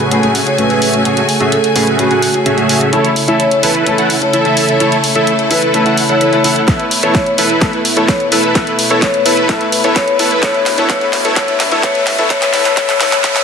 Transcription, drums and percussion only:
0.11 closed hi-hat
0.23 closed hi-hat
0.35 open hi-hat
0.47 closed hi-hat
0.58 closed hi-hat
0.70 closed hi-hat
0.82 open hi-hat
0.94 closed hi-hat
1.05 closed hi-hat
1.17 closed hi-hat
1.29 open hi-hat
1.40 closed hi-hat
1.52 closed hi-hat
1.64 closed hi-hat
1.76 open hi-hat
1.87 closed hi-hat
1.99 closed hi-hat
2.11 closed hi-hat
2.22 open hi-hat
2.34 closed hi-hat
2.46 closed hi-hat
2.58 closed hi-hat
2.69 open hi-hat
2.81 closed hi-hat
2.93 closed hi-hat
3.05 closed hi-hat
3.16 open hi-hat
3.28 closed hi-hat
3.40 closed hi-hat
3.51 closed hi-hat
3.63 open hi-hat
3.75 closed hi-hat
3.87 closed hi-hat
3.98 closed hi-hat
4.10 open hi-hat
4.22 closed hi-hat
4.33 closed hi-hat
4.45 closed hi-hat
4.57 open hi-hat
4.69 closed hi-hat
4.80 closed hi-hat
4.92 closed hi-hat
5.04 open hi-hat
5.15 closed hi-hat
5.27 closed hi-hat
5.39 closed hi-hat
5.51 open hi-hat
5.62 closed hi-hat
5.74 closed hi-hat
5.86 closed hi-hat
5.98 open hi-hat
6.09 closed hi-hat
6.21 closed hi-hat
6.33 closed hi-hat
6.44 open hi-hat
6.56 closed hi-hat
6.68 kick, snare, closed hi-hat
6.80 closed hi-hat
6.91 open hi-hat
7.03 closed hi-hat
7.15 kick, snare, closed hi-hat
7.26 closed hi-hat
7.38 open hi-hat
7.50 closed hi-hat
7.62 kick, snare, closed hi-hat
7.73 closed hi-hat
7.85 open hi-hat
7.97 closed hi-hat
8.08 kick, snare, closed hi-hat
8.20 closed hi-hat
8.32 open hi-hat
8.44 closed hi-hat
8.55 kick, snare, closed hi-hat
8.67 closed hi-hat
8.79 open hi-hat
8.90 closed hi-hat
9.02 kick, snare, closed hi-hat
9.14 closed hi-hat
9.26 open hi-hat
9.37 closed hi-hat
9.49 kick, snare, closed hi-hat
9.61 closed hi-hat
9.72 open hi-hat
9.84 closed hi-hat
9.96 kick, snare, closed hi-hat
10.08 closed hi-hat
10.19 open hi-hat
10.31 closed hi-hat
10.43 kick, snare, closed hi-hat
10.54 closed hi-hat
10.66 snare, open hi-hat
10.78 closed hi-hat
10.90 kick, snare, closed hi-hat
11.01 closed hi-hat
11.13 snare, open hi-hat
11.25 closed hi-hat
11.36 kick, snare, closed hi-hat
11.48 closed hi-hat
11.60 snare, open hi-hat
11.72 closed hi-hat
11.83 kick, snare, closed hi-hat
11.95 closed hi-hat
12.07 snare, open hi-hat
12.18 closed hi-hat
12.30 kick, snare, closed hi-hat
12.42 snare, closed hi-hat
12.54 snare, open hi-hat
12.65 snare, closed hi-hat
12.77 kick, snare, closed hi-hat
12.89 snare, closed hi-hat
13.01 snare, open hi-hat
13.12 snare, closed hi-hat
13.24 kick, snare, closed hi-hat
13.36 snare, closed hi-hat

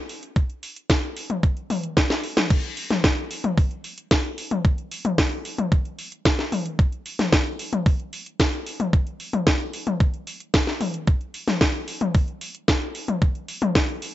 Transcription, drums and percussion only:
0.09 open hi-hat
0.23 closed hi-hat
0.36 kick, closed hi-hat
0.50 closed hi-hat
0.63 open hi-hat
0.76 closed hi-hat
0.90 kick, snare, closed hi-hat
1.03 closed hi-hat
1.17 open hi-hat
1.30 closed hi-hat, high tom
1.43 kick, closed hi-hat
1.57 closed hi-hat
1.70 open hi-hat, high tom
1.83 closed hi-hat
1.97 kick, snare, closed hi-hat
2.10 snare, closed hi-hat
2.24 open hi-hat
2.37 snare, closed hi-hat, high tom
2.50 kick, closed hi-hat, crash
2.64 closed hi-hat
2.77 open hi-hat
2.91 snare, closed hi-hat, high tom
3.04 kick, snare, closed hi-hat
3.17 closed hi-hat
3.31 open hi-hat
3.44 closed hi-hat, high tom
3.57 kick, open hi-hat
3.71 closed hi-hat
3.84 open hi-hat
3.98 closed hi-hat
4.11 kick, snare, closed hi-hat
4.24 closed hi-hat
4.38 open hi-hat
4.51 closed hi-hat, high tom
4.65 kick, closed hi-hat
4.78 closed hi-hat
4.91 open hi-hat
5.05 closed hi-hat, high tom
5.18 kick, snare, closed hi-hat
5.32 closed hi-hat
5.45 open hi-hat
5.58 closed hi-hat, high tom
5.72 kick, closed hi-hat
5.85 closed hi-hat
5.99 open hi-hat
6.12 closed hi-hat
6.25 kick, snare, closed hi-hat
6.39 snare, closed hi-hat
6.52 open hi-hat, high tom
6.66 closed hi-hat
6.79 kick, closed hi-hat
6.92 closed hi-hat
7.06 open hi-hat
7.19 snare, closed hi-hat, high tom
7.33 kick, snare, closed hi-hat
7.46 closed hi-hat
7.59 open hi-hat
7.73 closed hi-hat, high tom
7.86 kick, open hi-hat
8.00 closed hi-hat
8.13 open hi-hat
8.26 closed hi-hat
8.40 kick, snare, closed hi-hat
8.53 closed hi-hat
8.66 open hi-hat
8.80 closed hi-hat, high tom
8.93 kick, closed hi-hat
9.07 closed hi-hat
9.20 open hi-hat
9.33 closed hi-hat, high tom
9.47 kick, snare, closed hi-hat
9.60 closed hi-hat
9.73 open hi-hat
9.87 closed hi-hat, high tom
10.00 kick, closed hi-hat
10.14 closed hi-hat
10.27 open hi-hat
10.40 closed hi-hat
10.54 kick, snare, closed hi-hat
10.67 snare, closed hi-hat
10.81 open hi-hat, high tom
10.94 closed hi-hat
11.07 kick, closed hi-hat
11.21 closed hi-hat
11.34 open hi-hat
11.48 snare, closed hi-hat, high tom
11.61 kick, snare, closed hi-hat
11.74 closed hi-hat
11.88 open hi-hat
12.01 closed hi-hat, high tom
12.14 kick, open hi-hat
12.28 closed hi-hat
12.41 open hi-hat
12.55 closed hi-hat
12.68 kick, snare, closed hi-hat
12.82 closed hi-hat
12.95 open hi-hat
13.08 closed hi-hat, high tom
13.22 kick, closed hi-hat
13.35 closed hi-hat
13.48 open hi-hat
13.62 closed hi-hat, high tom
13.75 kick, snare, closed hi-hat
13.89 closed hi-hat
14.02 open hi-hat

